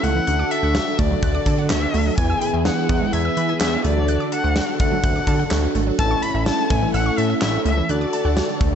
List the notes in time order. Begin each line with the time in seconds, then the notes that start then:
Already playing: A3 C#4 E4 A4
0.03 C#2 A3 F#5, closed hi-hat
0.15 E3
0.27 D2 D3 D4 F#4 A4 F#6, closed hi-hat
0.39 D6
0.51 E5 A5, closed hi-hat
0.63 D2 F#5
0.75 F#4, snare, closed hi-hat
0.99 D2 A3 D5, kick, closed hi-hat
1.11 F#3
1.23 D2 F#6, kick, closed hi-hat
1.35 D6
1.46 D3 A5, kick, closed hi-hat
1.58 F#5
1.70 D2 F#4 E5, snare, clap, closed hi-hat
1.94 D2 A3, open hi-hat
2.06 F#3
2.18 E2 E3 B3 E4 G#4 B4 G#5 G#6, kick, closed hi-hat
2.30 E6
2.41 B5, closed hi-hat
2.53 E2 G#5
2.65 G#4 F#5, snare, closed hi-hat
2.89 E2 B3, kick, closed hi-hat
3.01 G#3
3.13 E2 E5 G#6, closed hi-hat
3.25 E6
3.37 E3 B5, closed hi-hat
3.49 G#5
3.60 E2 G#4 E5, snare, clap, closed hi-hat
3.84 D2 D3 A3 D4 F#4 A4 D5, closed hi-hat
3.97 F#3
4.08 F#6, closed hi-hat
4.20 D6
4.32 F#5 A5, closed hi-hat
4.44 D2 F#5
4.56 F#4, snare, closed hi-hat
4.80 D2 A3 F#5, kick, closed hi-hat
4.92 F#3
5.04 D2 F#6, kick, closed hi-hat
5.16 D6
5.27 D3 A5, kick, closed hi-hat
5.39 F#5
5.51 D2 F#4, snare, clap, closed hi-hat
5.75 G#1 A3, closed hi-hat
5.87 F#3
5.99 A1 A3 C#4 E4 A4 A5 E6, kick, closed hi-hat
6.11 C#6
6.23 A5 B5, closed hi-hat
6.35 A1 E5
6.46 E4 A5, snare, closed hi-hat
6.70 A1 A3 G#5, kick, closed hi-hat
6.82 E3
6.94 A1 F#5 E6, closed hi-hat
7.06 C#6
7.18 A2 E5 A5, closed hi-hat
7.30 E5
7.42 A1 E4 E5, snare, clap, closed hi-hat
7.65 C#2 A3 E5, closed hi-hat
7.77 E3
7.89 D2 D3 D4 F#4 A4 D5 F#6, closed hi-hat
8.01 D6
8.13 A5, closed hi-hat
8.25 D2 F#5
8.37 F#4, snare, closed hi-hat
8.61 D2 A3, kick, closed hi-hat